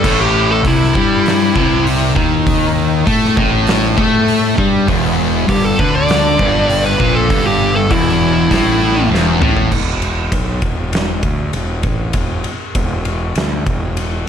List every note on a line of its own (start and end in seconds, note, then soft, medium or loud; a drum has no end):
0.00 0.63 A2 loud
0.00 0.19 A4 loud
0.04 0.61 A1 loud
0.04 kick loud
0.04 crash loud
0.21 0.50 G4 medium
0.52 0.65 A4 medium
0.63 0.93 C2 loud
0.63 0.93 C3 loud
0.63 1.83 E4 medium
0.63 kick loud
0.63 open hi-hat medium
0.83 snare soft
0.94 1.52 G2 loud
0.94 1.54 G3 loud
0.94 kick loud
1.26 snare loud
1.26 open hi-hat medium
1.55 2.12 C2 loud
1.55 2.15 C3 loud
1.55 kick loud
1.87 open hi-hat medium
2.15 3.03 D#2 loud
2.15 3.06 D#3 loud
2.15 kick loud
2.47 kick loud
2.47 open hi-hat medium
3.07 3.35 A2 loud
3.07 3.36 A3 loud
3.07 kick loud
3.07 open hi-hat medium
3.25 snare soft
3.36 3.93 A1 loud
3.36 3.96 A2 loud
3.36 kick loud
3.67 snare loud
3.67 open hi-hat medium
3.96 4.54 A2 loud
3.96 4.56 A3 loud
3.96 kick loud
4.28 open hi-hat medium
4.57 4.86 G2 loud
4.57 4.87 G3 loud
4.57 kick loud
4.88 5.45 E1 loud
4.88 5.47 E2 loud
4.88 kick loud
4.88 open hi-hat medium
5.48 5.77 G1 loud
5.48 5.78 G2 loud
5.48 5.65 G4 loud
5.48 kick loud
5.48 open hi-hat medium
5.65 5.79 A4 medium
5.78 6.35 D2 loud
5.78 6.38 D3 loud
5.78 5.94 B4 medium
5.78 kick loud
5.95 6.83 D5 loud
6.09 snare loud
6.09 open hi-hat medium
6.38 6.96 G1 loud
6.38 6.98 G2 loud
6.38 kick loud
6.70 open hi-hat medium
6.86 7.15 B4 medium
6.99 7.28 A#1 loud
6.99 7.29 A#2 loud
6.99 kick loud
7.15 7.44 A4 medium
7.29 7.87 G1 loud
7.29 7.89 G2 loud
7.29 kick loud
7.29 open hi-hat medium
7.46 7.75 G4 medium
7.76 7.90 A4 loud
7.89 8.47 E1 loud
7.89 8.49 E2 loud
7.89 9.08 E4 loud
7.89 kick loud
7.89 open hi-hat medium
8.09 snare soft
8.49 9.08 A1 medium
8.49 9.10 A2 loud
8.49 kick loud
8.49 open hi-hat medium
8.54 snare loud
9.10 9.39 E1 loud
9.10 9.40 E2 loud
9.15 snare medium
9.40 9.69 A1 loud
9.40 9.71 A2 loud
9.40 mid tom medium
9.57 floor tom medium
9.71 10.28 E1 medium
9.71 kick loud
9.71 crash loud
10.02 ride medium
10.32 10.60 B1 loud
10.32 kick loud
10.32 ride medium
10.62 11.19 E1 medium
10.62 kick loud
10.62 ride medium
10.93 snare loud
10.93 ride medium
11.23 11.51 D2 medium
11.23 kick loud
11.23 ride medium
11.53 11.82 E1 medium
11.53 ride medium
11.83 12.12 A1 loud
11.83 kick medium
11.83 ride medium
12.13 12.42 E1 medium
12.13 kick loud
12.13 ride medium
12.44 ride medium
12.75 13.32 E1 medium
12.75 kick loud
12.75 ride medium
13.05 ride medium
13.35 13.64 D2 medium
13.35 snare loud
13.35 ride medium
13.66 14.23 E1 medium
13.66 kick loud
13.66 ride medium
13.97 ride medium